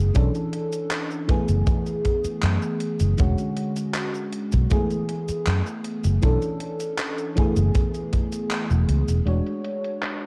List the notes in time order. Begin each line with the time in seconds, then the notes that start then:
Already playing: E3 A3 B3 G#4
0.14 B1 E3 C#4 D4 A4, kick, closed hi-hat, cabasa
0.35 closed hi-hat, cabasa
0.53 closed hi-hat
0.73 closed hi-hat, cabasa
0.91 clap, closed hi-hat, cabasa
1.11 cabasa
1.28 E3 A3 B3 G#4, kick, closed hi-hat
1.49 F#1, closed hi-hat, cabasa
1.67 kick, closed hi-hat, cabasa
1.86 closed hi-hat, cabasa
2.05 kick, closed hi-hat
2.25 muted fretless electric bass stroke, closed hi-hat, cabasa
2.42 F#2, clap, closed hi-hat, cabasa
2.62 cabasa
2.80 closed hi-hat
3.00 F#1, closed hi-hat, cabasa
3.17 E1 D3 G#3 C#4 F#4, kick, closed hi-hat, cabasa
3.38 closed hi-hat, cabasa
3.57 closed hi-hat
3.76 closed hi-hat, cabasa
3.94 clap, closed hi-hat, cabasa
4.14 cabasa
4.33 closed hi-hat
4.52 B1, kick, closed hi-hat, cabasa
4.70 E3 A3 B3 G#4, kick, closed hi-hat, cabasa
4.90 closed hi-hat, cabasa
5.09 closed hi-hat
5.28 muted fretless electric bass stroke, closed hi-hat, cabasa
5.47 F#2, clap, closed hi-hat, cabasa
5.66 cabasa
5.84 closed hi-hat
6.04 F#1, closed hi-hat, cabasa
6.22 B1 E3 C#4 D4 A4, kick, closed hi-hat, cabasa
6.42 closed hi-hat, cabasa
6.60 closed hi-hat
6.80 closed hi-hat, cabasa
6.98 clap, closed hi-hat, cabasa
7.18 closed hi-hat, cabasa
7.35 E3 A3 B3 G#4, kick, closed hi-hat
7.56 F#1, closed hi-hat, cabasa
7.75 kick, closed hi-hat, cabasa
7.94 closed hi-hat, cabasa
8.13 kick, closed hi-hat
8.32 closed hi-hat, cabasa
8.51 clap, closed hi-hat, cabasa
8.70 E1, cabasa
8.88 C#2, closed hi-hat
9.08 E1, closed hi-hat, cabasa
9.25 E1 G#3 D4 F#4 C#5, closed hi-hat
9.47 closed hi-hat
9.65 closed hi-hat
9.84 closed hi-hat
10.03 clap, closed hi-hat